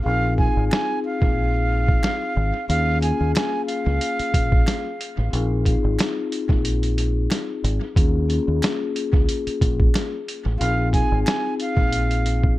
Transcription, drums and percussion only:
0.38 kick
0.71 finger snap, snare
1.22 kick
1.88 kick
2.03 finger snap, snare
2.70 closed hi-hat
3.02 closed hi-hat
3.35 finger snap, snare, closed hi-hat
3.68 closed hi-hat
4.01 closed hi-hat
4.19 closed hi-hat
4.34 kick, closed hi-hat
4.52 kick
4.66 finger snap, snare, closed hi-hat
5.01 closed hi-hat
5.33 closed hi-hat
5.66 kick, closed hi-hat
5.99 finger snap, snare, closed hi-hat
6.32 closed hi-hat
6.49 kick
6.65 closed hi-hat
6.83 closed hi-hat
6.98 closed hi-hat
7.30 finger snap, snare, closed hi-hat
7.64 closed hi-hat
7.96 kick, closed hi-hat
8.30 closed hi-hat
8.62 finger snap, snare, closed hi-hat
8.96 closed hi-hat
9.13 kick
9.29 closed hi-hat
9.47 closed hi-hat
9.61 kick, closed hi-hat
9.80 kick
9.94 finger snap, snare, closed hi-hat
10.28 closed hi-hat
10.61 closed hi-hat
10.93 kick, closed hi-hat
11.26 finger snap, snare, closed hi-hat
11.60 closed hi-hat
11.77 kick
11.92 closed hi-hat
12.11 closed hi-hat
12.26 closed hi-hat
12.44 kick

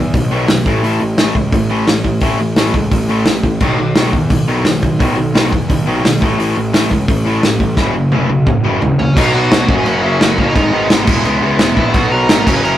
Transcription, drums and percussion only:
0.14 kick, open hi-hat
0.48 snare, open hi-hat
0.66 kick
0.84 open hi-hat
1.18 snare, open hi-hat
1.35 kick
1.52 kick, open hi-hat
1.87 snare, open hi-hat
2.04 kick
2.20 kick, open hi-hat
2.56 snare, open hi-hat
2.74 kick
2.92 kick, open hi-hat
3.25 snare, open hi-hat
3.43 kick
3.60 kick, crash
3.95 snare, open hi-hat
4.13 kick
4.30 kick, open hi-hat
4.65 snare, open hi-hat
4.83 kick
5.00 kick, open hi-hat
5.35 snare, open hi-hat
5.53 kick
5.70 kick, open hi-hat
6.05 snare, open hi-hat
6.22 kick
6.40 open hi-hat
6.74 snare, open hi-hat
6.91 kick
7.08 kick, open hi-hat
7.43 snare, open hi-hat
7.60 kick
7.77 kick, snare
8.12 high tom
8.47 kick, mid tom
8.64 mid tom
8.82 floor tom
9.00 floor tom
9.17 kick, crash
9.51 snare, crash
9.69 kick
9.86 crash
10.21 snare, crash
10.38 kick
10.56 kick, crash
10.90 snare, crash
11.07 kick, crash
11.25 crash
11.59 snare, crash
11.77 kick
11.94 kick, crash
12.29 snare, crash
12.47 kick, crash
12.65 crash

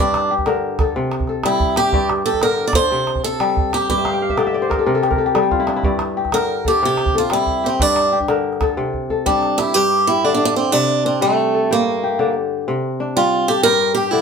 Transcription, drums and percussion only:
0.14 calabash click
0.30 calabash click
0.38 calabash thump, calabash click
0.46 calabash click
0.55 calabash click
0.79 calabash thump, calabash click
0.96 calabash click
1.12 calabash click
1.20 calabash thump
1.27 calabash click
1.44 calabash click
1.52 calabash click
1.60 calabash thump, calabash click
1.69 calabash click
1.76 calabash click
1.84 calabash click
1.93 calabash thump, calabash click
2.10 calabash click
2.33 calabash thump, calabash click
2.42 calabash click
2.73 calabash thump, calabash click
2.90 calabash click
3.07 calabash click
3.15 calabash thump
3.40 calabash click
3.57 calabash thump
3.73 calabash click
3.82 calabash click
3.89 calabash thump, calabash click
4.05 calabash click
4.29 calabash thump, calabash click
4.38 calabash click
4.47 calabash click
4.71 calabash thump, calabash click
4.87 calabash click
5.03 calabash click
5.11 calabash thump
5.35 calabash click
5.51 calabash thump
5.67 calabash click
5.75 calabash click
5.83 calabash thump, calabash click
5.99 calabash click
6.25 calabash thump, calabash click
6.32 calabash click
6.41 calabash click
6.65 calabash thump
6.81 calabash click
6.97 calabash click
7.06 calabash thump
7.30 calabash click
7.46 calabash thump
7.71 calabash click
7.80 calabash thump, calabash click
7.96 calabash click
8.20 calabash thump
8.28 calabash click
8.53 calabash click
8.61 calabash thump, calabash click
8.70 calabash click
8.94 calabash thump
9.10 calabash thump
9.26 calabash thump
9.43 calabash click
9.59 calabash click

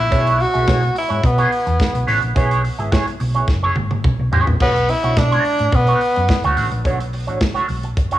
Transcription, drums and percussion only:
0.12 kick, closed hi-hat
0.27 closed hi-hat
0.40 open hi-hat
0.55 closed hi-hat
0.67 kick, snare, closed hi-hat
0.83 closed hi-hat
0.96 open hi-hat
1.10 closed hi-hat
1.23 kick, closed hi-hat
1.38 closed hi-hat
1.52 open hi-hat
1.67 closed hi-hat
1.79 kick, snare, closed hi-hat
1.95 closed hi-hat
2.08 open hi-hat
2.22 closed hi-hat
2.36 kick, closed hi-hat
2.51 closed hi-hat
2.65 open hi-hat
2.80 closed hi-hat
2.92 kick, snare, closed hi-hat
3.07 closed hi-hat
3.20 open hi-hat
3.34 closed hi-hat
3.48 kick, snare
3.76 high tom
3.91 high tom
4.04 kick, mid tom
4.33 floor tom
4.47 floor tom
4.60 kick, crash
4.76 closed hi-hat
4.89 open hi-hat
5.04 closed hi-hat
5.17 kick, snare, closed hi-hat
5.32 closed hi-hat
5.45 open hi-hat
5.59 closed hi-hat
5.72 kick, closed hi-hat
5.87 closed hi-hat
6.01 open hi-hat
6.16 closed hi-hat
6.28 kick, snare, closed hi-hat
6.44 closed hi-hat
6.57 open hi-hat
6.72 closed hi-hat
6.85 kick, closed hi-hat
7.00 closed hi-hat
7.13 open hi-hat
7.28 closed hi-hat
7.41 kick, snare, closed hi-hat
7.56 closed hi-hat
7.69 open hi-hat
7.83 closed hi-hat
7.97 kick, closed hi-hat
8.11 closed hi-hat

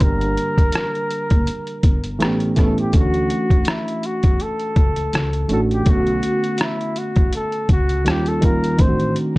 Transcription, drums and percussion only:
0.00 kick, closed hi-hat
0.21 closed hi-hat
0.37 closed hi-hat
0.58 kick, closed hi-hat
0.72 cross-stick, closed hi-hat
0.95 closed hi-hat
1.10 closed hi-hat
1.30 kick, closed hi-hat
1.47 closed hi-hat
1.67 closed hi-hat
1.83 kick, closed hi-hat
2.04 closed hi-hat
2.20 cross-stick, closed hi-hat
2.40 closed hi-hat
2.56 kick, cross-stick, closed hi-hat
2.78 closed hi-hat
2.93 kick, closed hi-hat
3.14 closed hi-hat
3.30 closed hi-hat
3.50 kick, closed hi-hat
3.65 cross-stick, closed hi-hat
3.88 closed hi-hat
4.03 closed hi-hat
4.23 kick, closed hi-hat
4.40 closed hi-hat
4.60 closed hi-hat
4.76 kick, closed hi-hat
4.96 closed hi-hat
5.13 cross-stick, closed hi-hat
5.33 closed hi-hat
5.49 closed hi-hat
5.71 closed hi-hat
5.86 kick, closed hi-hat
6.07 closed hi-hat
6.23 closed hi-hat
6.44 closed hi-hat
6.58 cross-stick, closed hi-hat
6.81 closed hi-hat
6.96 closed hi-hat
7.16 kick, closed hi-hat
7.33 closed hi-hat
7.52 closed hi-hat
7.69 kick, closed hi-hat
7.89 closed hi-hat
8.06 cross-stick, closed hi-hat
8.26 closed hi-hat
8.42 kick, closed hi-hat
8.64 closed hi-hat
8.79 kick, closed hi-hat
9.00 closed hi-hat
9.16 closed hi-hat

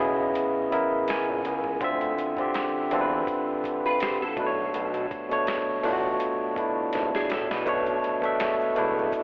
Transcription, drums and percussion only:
0.35 closed hi-hat
0.72 closed hi-hat
1.08 snare, closed hi-hat
1.45 closed hi-hat
1.64 kick
1.81 kick, closed hi-hat
2.01 closed hi-hat
2.18 closed hi-hat
2.37 kick, closed hi-hat
2.54 snare, closed hi-hat
2.91 closed hi-hat
3.27 kick, closed hi-hat
3.64 kick, closed hi-hat
4.00 snare, closed hi-hat
4.37 kick, closed hi-hat
4.74 closed hi-hat
4.94 closed hi-hat
5.11 kick, closed hi-hat
5.31 closed hi-hat
5.47 snare, closed hi-hat
5.84 open hi-hat
6.20 closed hi-hat
6.56 kick, closed hi-hat
6.93 snare, closed hi-hat
7.15 snare
7.30 snare, closed hi-hat
7.51 snare
7.66 kick, closed hi-hat, shaker
7.86 closed hi-hat, shaker
8.04 closed hi-hat
8.22 kick, closed hi-hat, shaker
8.40 finger snap, snare, closed hi-hat, shaker
8.60 shaker
8.75 closed hi-hat, shaker
8.98 shaker
9.12 kick, closed hi-hat, shaker

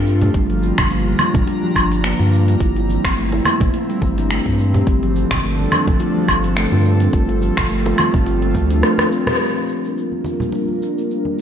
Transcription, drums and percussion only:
0.07 cabasa
0.22 open hi-hat, low conga, cabasa
0.34 kick, open hi-hat, cabasa
0.50 open hi-hat
0.63 cabasa
0.78 finger snap, kick, open hi-hat, low conga, cabasa, low woodblock
0.91 open hi-hat, cabasa
1.06 high conga
1.19 high conga, cabasa, low woodblock
1.34 kick, open hi-hat, low conga, cabasa
1.47 open hi-hat, muted conga, cabasa
1.63 high conga
1.76 kick, cabasa, low woodblock
1.92 open hi-hat, cabasa
2.04 finger snap, open hi-hat, cabasa
2.19 high conga
2.33 cabasa
2.48 open hi-hat, cabasa
2.60 kick, open hi-hat, cabasa
2.76 open hi-hat
2.90 cabasa
3.05 finger snap, kick, open hi-hat, cabasa, low woodblock
3.17 open hi-hat, cabasa
3.32 muted conga, high conga
3.45 muted conga, high conga, cabasa, low woodblock
3.60 kick, open hi-hat, low conga, cabasa
3.74 open hi-hat, cabasa
3.90 open hi-hat
4.02 kick, high conga, cabasa
4.18 open hi-hat, cabasa
4.31 finger snap, open hi-hat, cabasa
4.46 kick
4.59 cabasa
4.74 open hi-hat, low conga, cabasa
4.87 kick, open hi-hat, cabasa
5.03 open hi-hat
5.16 cabasa
5.31 finger snap, kick, open hi-hat, low conga, cabasa, low woodblock
5.44 open hi-hat, cabasa
5.59 high conga
5.72 high conga, cabasa, low woodblock
5.87 kick, open hi-hat, low conga, cabasa
6.00 open hi-hat, muted conga, cabasa
6.17 high conga
6.28 kick, cabasa, low woodblock
6.44 open hi-hat, cabasa
6.57 finger snap, open hi-hat, cabasa
6.73 high conga
6.86 cabasa
7.00 open hi-hat, cabasa
7.13 kick, open hi-hat, cabasa
7.29 open hi-hat
7.42 high conga, cabasa
7.57 finger snap, kick, open hi-hat, low conga, cabasa, low woodblock
7.70 open hi-hat, cabasa
7.85 open hi-hat, muted conga, high conga
7.98 muted conga, high conga, cabasa, low woodblock
8.14 kick, open hi-hat, low conga, cabasa
8.26 open hi-hat, cabasa
8.42 open hi-hat
8.55 kick, high conga, cabasa
8.71 open hi-hat, cabasa
8.83 cross-stick, open hi-hat, cabasa
8.98 cross-stick, open hi-hat, high conga
9.12 cabasa
9.27 cross-stick, open hi-hat, low conga, cabasa
9.40 cabasa
9.69 cabasa
9.85 cabasa
9.97 cabasa
10.12 high conga
10.24 high conga, cabasa
10.40 low conga, cabasa
10.52 muted conga, cabasa
10.68 high conga
10.82 cabasa
10.98 cabasa
11.11 cabasa
11.25 high conga

